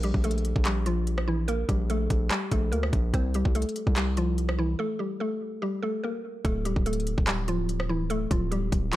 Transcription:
Already playing: A#1
0.03 G3 G4, closed hi-hat
0.14 A#1, kick
0.24 A3 A4, closed hi-hat
0.31 closed hi-hat
0.38 closed hi-hat
0.45 closed hi-hat
0.56 A#1, kick
0.65 G3 G4, clap, closed hi-hat
0.86 F3 F4, closed hi-hat
1.07 closed hi-hat
1.18 cross-stick
1.28 E3 E4
1.48 A#3 A#4, closed hi-hat
1.69 A#1 G3 G4, kick, closed hi-hat
1.90 A3 A4, closed hi-hat
2.10 A#1, kick, closed hi-hat
2.30 G3 G4, clap, closed hi-hat
2.51 A#1 A3 A4, kick, closed hi-hat
2.72 D2 A#3 A#4, closed hi-hat
2.83 cross-stick
2.93 A#1, kick, closed hi-hat
3.14 C2 C4 C5, kick, closed hi-hat
3.34 G3 G4, closed hi-hat
3.45 C2, kick
3.55 A3 A4, closed hi-hat
3.62 closed hi-hat
3.69 closed hi-hat
3.76 closed hi-hat
3.87 C2, kick
3.96 G3 G4, clap, closed hi-hat
4.17 F3 F4, closed hi-hat
4.38 closed hi-hat
4.49 cross-stick
4.59 E3 E4
4.79 A3 A4
4.99 G3 G4
5.20 A3 A4
5.62 G3 G4
5.83 A3 A4
6.04 A#3 A#4
6.45 D1 A3 A4, kick, closed hi-hat
6.65 G3 G4, closed hi-hat
6.76 D1, kick
6.86 A3 A4, closed hi-hat
6.93 closed hi-hat
7.00 closed hi-hat
7.07 closed hi-hat
7.18 D1, kick
7.27 G3 G4, clap, closed hi-hat
7.48 F3 F4, closed hi-hat
7.69 closed hi-hat
7.80 cross-stick
7.89 E3 E4
8.10 A3 A4, closed hi-hat
8.31 D1 F3 F4, kick, closed hi-hat
8.51 G3 G4, closed hi-hat
8.72 D1, kick, closed hi-hat
8.93 F4, clap, closed hi-hat

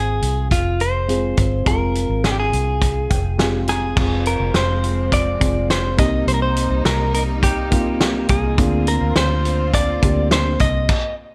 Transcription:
Already playing: G#1 G#3 C4 F4 G#4
0.22 C2, closed hi-hat
0.51 F1 F4, kick, closed hi-hat
0.80 C5, closed hi-hat
1.07 G#3 C4 F4 G#4, closed hi-hat
1.37 G1, kick, closed hi-hat
1.65 F1 G#3 C4 F4 G#4 A#4, kick, closed hi-hat
1.95 closed hi-hat
2.09 G#1
2.24 G#4, snare, closed hi-hat
2.32 G4
2.40 G#4
2.53 C2, closed hi-hat
2.82 kick, closed hi-hat
3.10 F1 G5, kick, closed hi-hat
3.38 G#3 C4 F4 G4 G#5, snare, closed hi-hat
3.68 G#4 A#5, snare, closed hi-hat
3.96 F1 F3 G#3 C4 F4 G#4, kick, crash
4.26 A#4, closed hi-hat
4.40 F1
4.54 F1 C5, snare, closed hi-hat
4.84 closed hi-hat
5.12 D5, kick, closed hi-hat
5.40 F1 G#3 C4 F4 G#4, kick, closed hi-hat
5.70 C5, snare, closed hi-hat
5.97 C2 C3 G3 A#3 C4 D#4 G4 D#5, kick, snare, closed hi-hat
6.27 C2 C5, closed hi-hat
6.34 A#4
6.42 C5
6.56 closed hi-hat
6.70 C2
6.85 C2 A#4, snare, closed hi-hat
7.14 A#4, closed hi-hat
7.43 G4, kick, closed hi-hat
7.70 A#3 C4 D#4 F4, kick, closed hi-hat
8.01 snare, closed hi-hat
8.28 C2 G#4, kick, closed hi-hat
8.57 D2 D3 A#3 C4 D4 F4, kick, closed hi-hat
8.87 A#4, closed hi-hat
9.01 D2
9.16 D2 C5, snare, closed hi-hat
9.45 closed hi-hat
9.74 D5, kick, closed hi-hat
10.01 D2 A#3 C4 D4 G4, kick, closed hi-hat
10.31 C5, snare, closed hi-hat
10.59 C2 D#5, kick, closed hi-hat
10.89 kick, crash

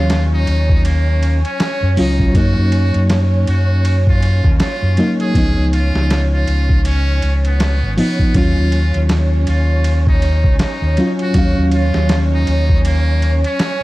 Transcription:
Already playing: D#2 F#3 C#4 F4 C#5 F5
0.10 snare, ride
0.33 D#4
0.47 D#2, ride
0.69 kick
0.85 A#3, ride
1.23 ride
1.45 C#4, ride
1.60 snare, ride
1.82 F#2
1.97 C#2 F#3 C#4 D#4 F4, open hi-hat
2.19 kick
2.34 F#2 F#3 A#3 D#4 F#4, kick, ride
2.57 F#2
2.72 ride
2.94 F#2, ride
3.10 snare, ride
3.47 F#2 F#4, ride
3.85 ride
4.07 F4, kick
4.22 ride
4.44 D#2, kick
4.60 F4, snare, ride
4.82 F#2
4.97 F#3 A#3 D#4, ride
5.20 G#4, ride
5.34 C#2 F3 B3, kick, ride
5.38 D#4
5.57 C#2
5.73 F4, ride
5.94 C#2, snare
6.10 snare, ride
6.34 F4
6.48 C#2, ride
6.69 kick
6.85 C#4, ride
7.22 C#2, ride
7.45 B3, ride
7.60 snare, ride
7.83 G#1
7.97 F3 B3 D#4, open hi-hat
8.19 kick
8.34 D#2 F#3 C#4 F4 C#5, kick, ride
8.58 D#2
8.72 ride
8.94 D#2, ride
9.09 snare, ride
9.47 D#2 F4, ride
9.84 ride
10.07 D#4, kick
10.22 ride
10.44 C#2, kick
10.59 D#4, snare, ride
10.82 D#2
10.97 F#3 C#4 F4, ride
11.19 F#4, ride
11.34 D#2 F#3 C#4, kick, ride
11.38 F5
11.57 D#2
11.72 F4, ride
11.94 D#2, snare
12.09 snare, ride
12.34 D#4
12.47 D#2, ride
12.69 kick
12.85 A#3, ride
13.22 ride
13.44 C#4, ride
13.59 snare, ride

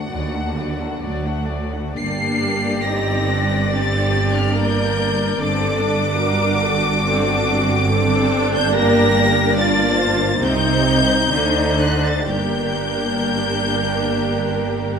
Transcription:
Already playing: A3 D4 F#4 F#5
0.11 D2 D#2 F#3 D4 F#4 D5
0.33 A3 D4 F#4 F#5
0.57 F#3 D4 F#4 D5
0.80 A3 D4 F#4 F#5
1.02 D2 F#3 D4 F#4 D5
1.26 A3 D4 F#4 F#5
1.48 F#3 D4 F#4 D5
1.72 A3 D4 F#4 F#5
1.95 G1 G2 A#3 D4 G4 D5 C7
2.84 C4 D#4 A#6
3.28 D4
3.71 C4 D4 G4 A6
4.35 F6
4.54 A#3 A#4 G6
4.96 A#3
5.38 G1 G2 C4 D4 A4 D6
5.79 D4
6.20 F#4 A#4
6.61 A4
7.05 C4 D4
7.47 C4
7.89 C4 D4 A4
8.55 G6
8.71 A#3 G4 A#4 A#6
9.14 A#3
9.55 D4 F4 D5 A6
9.96 C5
10.40 C2 C3 C4 D#4 C5 G6
11.30 D2 D3 A3 D4 C5
11.80 F#6
12.05 A6
12.28 G1 G2 A#3 D4 G4 A#4 G6

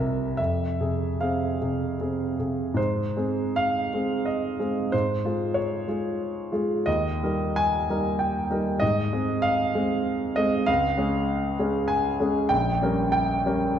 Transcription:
Already playing: C2 C3 E5
0.00 A#4
0.37 F2 E5
0.81 C3 G#4
1.21 C4 G#4 F5
1.61 C3 G#4
2.01 C4 G#4
2.39 C3 G#4
2.74 G#2 C5
3.17 G#3 C4 G#4
3.56 F5
3.93 G#3 C4 G#4
4.25 D#5
4.59 G#3 C4 G#4
4.92 G#2 C5
5.25 G#3 F4 G#4
5.54 C#5
5.88 G#3 F4 G#4
6.52 G#3 F4 G#4
6.86 D#2 D#5
7.23 G3 D#4 A#4
7.56 G#5
7.89 G3 D#4 A#4
8.19 G5
8.50 G3 D#4 A#4
8.80 G#2 D#5
9.13 G#3 C4 G#4
9.42 F5
9.75 G#3 C4 G#4
10.36 G#3 C4 G#4 D#5
10.66 C#2 F5
10.97 G#3 C#4 G#4
11.59 G#3 C#4 G#4
11.88 G#5
12.20 G#3 C#4 G#4
12.49 A#1 G5
12.82 G3 C#4 A#4
13.12 G5
13.46 G3 C#4 A#4

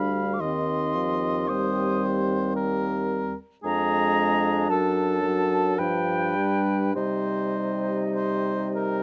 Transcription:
Already playing: D2 G3 D4 F5 B5
0.33 D6
0.39 D#2 D#3 C4 D#5 C6
0.95 F3
1.48 G3 C4 C5 D#6
2.56 A#4
3.63 F2 G#3 D4 G#4 A#5
4.69 F#2 F#3 A4 A5
5.23 F#3
5.78 G2 F3 D4 B4 G5
6.36 G3
6.94 C3 G3 D#4 C5 D#5
8.15 C5
8.75 A#4

